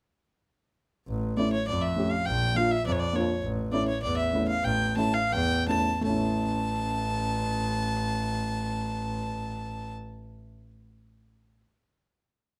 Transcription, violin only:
1.37 1.51 D5 medium
1.53 1.66 C#5 medium
1.68 1.83 D5 medium
1.81 2.13 E5 medium
2.11 2.27 F5 medium
2.26 2.58 G5 medium
2.56 2.73 F5 medium
2.71 2.85 E5 medium
2.86 2.93 D5 medium
2.92 3.01 C#5 medium
3.00 3.17 D5 medium
3.16 3.44 C#5 medium
3.72 3.86 D5 medium
3.88 4.02 C#5 medium
4.03 4.16 D5 medium
4.17 4.46 E5 medium
4.48 4.66 F5 medium
4.64 4.96 G5 medium
4.97 5.16 A5 medium
5.14 5.34 F5 medium
5.32 5.67 G5 medium
5.68 6.03 A5 medium
6.04 9.94 A5 medium

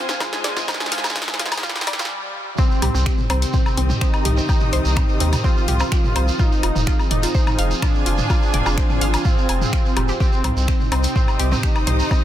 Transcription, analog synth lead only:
0.00 0.11 C4 loud
0.20 1.65 G#3 loud
1.63 2.49 G3 loud
2.59 3.21 C4 loud
3.30 3.92 C4 loud
4.01 5.35 D#4 loud
5.44 6.41 F4 loud
6.39 7.02 D#4 loud
7.11 7.73 D#4 loud
7.82 9.27 D4 loud
9.25 10.11 C4 loud
10.20 10.83 C4 loud
10.92 11.65 C4 loud
11.63 12.24 D#4 loud

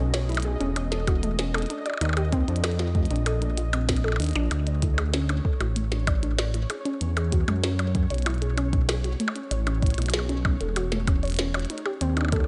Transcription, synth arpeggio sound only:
0.14 0.22 C#5 medium
0.29 0.42 E4 medium
0.45 0.50 G#4 medium
0.60 0.74 C#4 loud
0.76 0.85 C#4 medium
0.92 1.05 A4 medium
1.07 1.16 F#4 medium
1.23 1.32 A3 medium
1.39 1.47 C#4 medium
1.54 1.63 A4 medium
1.70 1.79 D4 medium
1.86 1.94 D5 medium
2.01 2.14 D#4 medium
2.17 2.22 G4 medium
2.32 2.46 C4 loud
2.48 2.57 D4 medium
2.64 2.77 A4 medium
2.79 2.88 F4 medium
2.95 3.04 A3 medium
3.11 3.19 D4 medium
3.26 3.35 A4 medium
3.42 3.51 D4 medium
3.58 3.71 F4 medium
3.73 3.86 C4 medium
3.89 3.97 C4 medium
4.04 4.13 A4 loud
4.20 4.29 D4 medium
4.36 4.44 D4 loud
4.67 4.76 D5 medium
4.82 4.96 E4 medium
4.98 5.03 G#4 medium
5.14 5.27 C#4 loud
5.29 5.38 D4 medium
5.45 5.58 A4 medium
5.60 5.69 F#4 medium
5.76 5.85 A3 medium
5.92 6.01 D4 medium
6.07 6.20 D5 medium
6.23 6.32 D4 medium
6.38 6.47 D5 medium
6.54 6.67 E4 medium
6.70 6.75 G#4 medium
6.85 6.99 C#4 loud
7.01 7.10 C#4 medium
7.17 7.30 G#4 medium
7.32 7.41 F#4 medium
7.48 7.57 G#3 medium
7.63 7.72 C#4 medium
7.79 7.92 C#5 medium
7.95 8.04 C#4 medium
8.10 8.19 C#5 medium
8.26 8.39 E4 medium
8.42 8.47 G#4 medium
8.57 8.71 C#4 loud
8.73 8.82 C#4 medium
8.89 9.02 G#4 medium
9.04 9.13 F#4 medium
9.20 9.29 A3 medium
9.36 9.44 C#4 medium
9.51 9.64 C#5 medium
9.67 9.76 C#4 medium
9.82 9.91 C#5 medium
9.98 10.11 E4 medium
10.14 10.19 G#4 medium
10.29 10.42 C#4 loud
10.45 10.54 C#4 medium
10.61 10.74 A4 medium
10.76 10.85 F#4 medium
10.92 11.01 A3 medium
11.08 11.16 C#4 medium
11.23 11.36 C#5 medium
11.39 11.47 C#4 medium
11.54 11.63 C#5 medium
11.70 11.83 D#4 medium
11.86 11.91 G4 medium
12.01 12.14 C4 loud
12.17 12.26 D4 medium
12.32 12.46 A4 medium

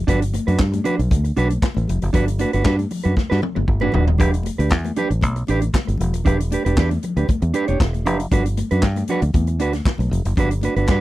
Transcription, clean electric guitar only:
0.07 0.22 D4 medium
0.07 0.22 F#4 medium
0.07 0.21 B4 loud
0.22 muted clean electric guitar stroke medium
0.34 muted clean electric guitar stroke soft
0.47 0.58 D4 medium
0.47 0.58 F#4 medium
0.47 0.58 B4 medium
0.72 muted clean electric guitar stroke soft
0.84 0.99 D4 medium
0.84 0.98 F#4 medium
0.84 0.97 B4 loud
0.98 muted clean electric guitar stroke soft
1.24 muted clean electric guitar stroke soft
1.37 1.51 D4 medium
1.37 1.50 F#4 medium
1.37 1.49 B4 medium
1.50 muted clean electric guitar stroke soft
1.62 muted clean electric guitar stroke soft
1.77 muted clean electric guitar stroke soft
2.02 muted clean electric guitar stroke soft
2.13 2.28 D4 medium
2.13 2.28 F#4 loud
2.13 2.26 B4 medium
2.27 muted clean electric guitar stroke soft
2.39 2.51 D4 medium
2.39 2.52 F#4 medium
2.39 2.52 B4 medium
2.53 2.64 D4 medium
2.53 2.64 F#4 medium
2.53 2.64 B4 medium
2.65 2.80 D4 medium
2.65 2.78 F#4 medium
2.65 2.77 B4 medium
2.78 muted clean electric guitar stroke medium
2.91 muted clean electric guitar stroke soft
3.04 3.15 D4 medium
3.04 3.15 F#4 medium
3.04 3.14 B4 medium
3.17 muted clean electric guitar stroke soft
3.30 3.41 D4 medium
3.30 3.42 F#4 medium
3.30 3.42 B4 medium
3.42 muted clean electric guitar stroke soft
3.55 muted clean electric guitar stroke soft
3.68 muted clean electric guitar stroke soft
3.81 3.93 D4 medium
3.81 3.94 F#4 medium
3.81 3.95 B4 medium
3.94 4.06 D4 medium
3.94 4.06 F#4 medium
3.94 4.06 B4 medium
4.19 4.34 D4 medium
4.19 4.33 G4 medium
4.19 4.32 B4 medium
4.33 muted clean electric guitar stroke soft
4.46 muted clean electric guitar stroke soft
4.58 4.70 D4 medium
4.58 4.70 G4 medium
4.58 4.69 B4 medium
4.85 muted clean electric guitar stroke soft
4.97 5.11 D4 medium
4.97 5.11 G4 medium
4.97 5.10 B4 medium
5.11 muted clean electric guitar stroke medium
5.36 muted clean electric guitar stroke soft
5.48 5.63 D4 medium
5.48 5.62 G4 loud
5.48 5.61 B4 medium
5.62 muted clean electric guitar stroke soft
5.75 muted clean electric guitar stroke soft
5.87 muted clean electric guitar stroke soft
6.14 muted clean electric guitar stroke medium
6.25 6.40 D4 medium
6.25 6.40 G4 medium
6.25 6.38 B4 medium
6.40 muted clean electric guitar stroke soft
6.52 6.63 D4 medium
6.52 6.64 G4 medium
6.52 6.64 B4 medium
6.65 6.76 D4 medium
6.65 6.76 G4 medium
6.65 6.75 B4 medium
6.78 6.92 D4 medium
6.78 6.92 G4 medium
6.78 6.90 B4 medium
6.92 muted clean electric guitar stroke soft
7.03 muted clean electric guitar stroke soft
7.17 7.27 D4 soft
7.17 7.27 G4 medium
7.17 7.27 B4 medium
7.30 muted clean electric guitar stroke soft
7.42 muted clean electric guitar stroke soft
7.54 7.69 D4 medium
7.54 7.68 G4 medium
7.54 7.68 B4 medium
7.68 7.79 D4 soft
7.68 7.79 G4 medium
7.68 7.78 C#5 medium
7.81 muted clean electric guitar stroke soft
7.93 muted clean electric guitar stroke soft
8.06 8.20 D4 medium
8.06 8.20 G4 medium
8.06 8.19 B4 medium
8.20 muted clean electric guitar stroke medium
8.32 8.46 D4 medium
8.32 8.46 F#4 medium
8.32 8.45 B4 medium
8.46 muted clean electric guitar stroke soft
8.58 muted clean electric guitar stroke soft
8.71 8.82 D4 medium
8.71 8.82 F#4 medium
8.71 8.81 B4 medium
8.97 muted clean electric guitar stroke medium
9.09 9.24 D4 medium
9.09 9.23 F#4 medium
9.09 9.22 B4 medium
9.23 muted clean electric guitar stroke soft
9.48 muted clean electric guitar stroke soft
9.60 9.75 D4 medium
9.60 9.75 F#4 medium
9.60 9.73 B4 medium
9.75 muted clean electric guitar stroke soft
9.87 muted clean electric guitar stroke soft
10.01 muted clean electric guitar stroke soft
10.26 muted clean electric guitar stroke soft
10.37 10.52 D4 medium
10.37 10.52 F#4 medium
10.37 10.50 B4 loud
10.52 muted clean electric guitar stroke medium
10.63 10.75 D4 medium
10.63 10.75 F#4 medium
10.63 10.75 B4 medium
10.76 10.88 D4 medium
10.76 10.88 F#4 medium
10.76 10.87 B4 medium
10.89 11.01 D4 medium
10.89 11.01 F#4 medium
10.89 11.01 B4 medium

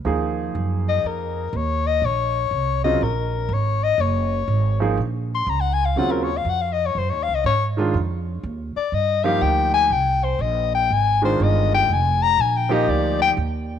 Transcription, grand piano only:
0.05 1.43 F3 medium
0.05 1.43 A#3 medium
0.05 1.44 D#4 medium
0.05 1.44 G#4 medium
2.84 3.00 C#3 medium
2.84 2.99 F#3 medium
2.84 3.00 C4 medium
2.84 3.00 F4 medium
4.80 4.96 F3 medium
4.80 4.96 A#3 medium
4.80 4.97 D#4 medium
4.80 4.97 G#4 medium
5.97 6.26 C#3 medium
5.97 6.26 F#3 medium
5.97 6.27 C4 medium
5.97 6.27 F4 medium
7.77 7.92 D#3 medium
7.77 7.93 G#3 medium
7.77 7.93 D4 medium
7.77 7.93 F4 medium
9.24 9.88 F3 medium
9.24 9.88 A#3 medium
9.24 9.88 D#4 medium
9.24 9.88 G4 medium
11.22 11.85 D#3 medium
11.22 11.85 G#3 medium
11.22 11.85 D4 medium
11.22 11.86 F4 medium
12.69 13.33 F3 medium
12.69 13.33 A#3 medium
12.69 13.33 D#4 medium
12.69 13.34 G4 medium

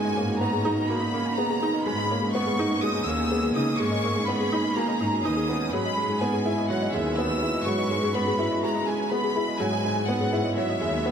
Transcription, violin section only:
0.00 0.37 G#5 loud
0.41 0.89 A#5 loud
0.89 1.38 B5 loud
1.38 1.86 A#5 loud
1.86 2.31 B5 loud
2.35 2.83 C#6 loud
2.83 3.07 D#6 loud
3.07 3.56 E6 loud
3.56 3.78 D#6 loud
3.80 4.28 C#6 loud
4.29 4.77 B5 loud
4.76 5.25 A#5 loud
5.25 5.73 D#6 loud
5.73 6.22 B5 loud
6.22 6.70 G#5 loud
6.70 6.93 F#5 loud
6.95 7.19 E5 medium
7.18 7.67 E6 loud
7.67 8.15 C#6 loud
8.15 8.63 B5 loud
8.64 8.86 A#5 loud
8.88 9.12 G#5 medium
9.12 9.60 B5 loud
9.60 10.09 G#5 loud
10.09 10.57 F#5 loud
10.57 11.11 E5 loud

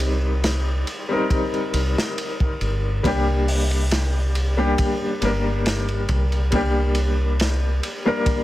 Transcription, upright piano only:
0.00 1.09 G3 medium
0.00 1.10 C4 medium
0.00 1.11 D#4 medium
0.00 1.06 G4 medium
0.00 1.13 A#4 medium
1.09 2.99 G3 medium
1.09 3.00 C4 medium
1.09 3.00 D#4 medium
1.13 3.01 A#4 loud
3.03 4.52 G3 medium
3.03 4.53 A#3 medium
3.03 4.53 D4 medium
3.07 4.54 G4 medium
4.57 5.17 G3 medium
4.57 5.17 A#3 medium
4.57 5.17 D4 medium
4.57 5.18 G4 loud
5.20 6.47 G3 medium
5.20 6.47 A#3 medium
5.20 6.48 D4 medium
5.25 6.49 A#4 medium
6.51 7.99 G3 medium
6.51 8.00 A#3 medium
6.51 8.01 D4 medium
6.55 8.02 G4 medium
8.05 8.44 G3 medium
8.05 8.44 A#3 medium
8.05 8.44 D4 medium
8.05 8.44 A#4 loud

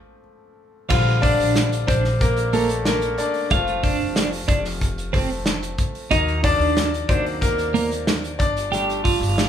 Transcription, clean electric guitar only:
0.90 1.21 F4 medium
1.23 1.69 D4 medium
1.88 2.04 D4 medium
2.53 2.69 A#3 medium
3.51 3.82 F4 medium
3.83 4.29 D4 medium
4.48 4.64 D4 medium
5.13 5.29 C4 medium
6.11 6.42 D#4 loud
6.44 6.90 D4 medium
7.09 7.25 D4 medium
7.74 7.90 A#3 medium
8.72 9.03 G4 loud
9.04 9.49 F4 medium

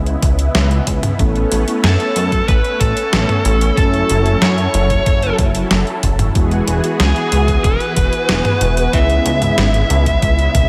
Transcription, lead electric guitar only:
1.84 2.48 A4 medium
2.48 2.78 B4 medium
2.80 3.76 A4 medium
3.77 4.44 A4 medium
4.42 5.35 C#5 loud
7.00 7.64 G#4 medium
7.64 8.97 B4 medium
8.93 10.69 E5 loud

